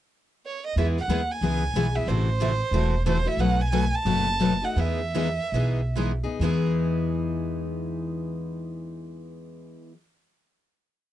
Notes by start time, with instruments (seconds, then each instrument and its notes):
0.46 violin C#5
0.66 violin D#5
0.76 upright bass E2, steel-string acoustic guitar E3 G#3 B3 E4 G#4 B4, violin E5
0.98 violin F#5
1.08 upright bass D#2, steel-string acoustic guitar E3 G#3 B3 E4 G#4 B4
1.31 violin G#5
1.41 upright bass C#2, steel-string acoustic guitar E3 G#3 B3 E4 G#4 B4
1.74 upright bass B1, steel-string acoustic guitar E3 G#3 B3 E4 G#4 B4
1.95 steel-string acoustic guitar B3 E4 G#4, violin E5
2.07 upright bass A1, steel-string acoustic guitar C3 E3 A3 C4 E4 F#4 A4, violin C5
2.40 steel-string acoustic guitar C3 E3 A3 C4 E4 F#4 A4
2.71 upright bass E1, steel-string acoustic guitar C3 E3 A3 C4 E4 F#4 A4
3.06 steel-string acoustic guitar C3 E3 A3 C4 E4 F#4 A4, violin C5
3.25 steel-string acoustic guitar A3 E4 F#4, violin E5
3.37 upright bass B1, steel-string acoustic guitar B2 F#3 A3 D#4 F#4 B4, violin F#5
3.61 violin G#5
3.72 steel-string acoustic guitar B2 F#3 A3 D#4 F#4 B4
3.95 violin A5
4.05 upright bass F#1, steel-string acoustic guitar B2 F#3 A3 D#4 F#4 B4
4.40 steel-string acoustic guitar B2 F#3 A3 D#4 F#4 B4
4.62 steel-string acoustic guitar A3 D#4 F#4, violin F#5
4.76 upright bass E2, steel-string acoustic guitar E3 G#3 B3 D#4 G#4, violin E5
5.15 steel-string acoustic guitar E3 G#3 B3 D#4 G#4
5.52 upright bass B1, steel-string acoustic guitar E3 G#3 B3 D#4 G#4
5.96 steel-string acoustic guitar E3 G#3 B3 D#4 G#4
6.23 steel-string acoustic guitar B3 D#4 G#4
6.40 upright bass E2, steel-string acoustic guitar E3 G#3 B3 D#4
6.44 steel-string acoustic guitar G#4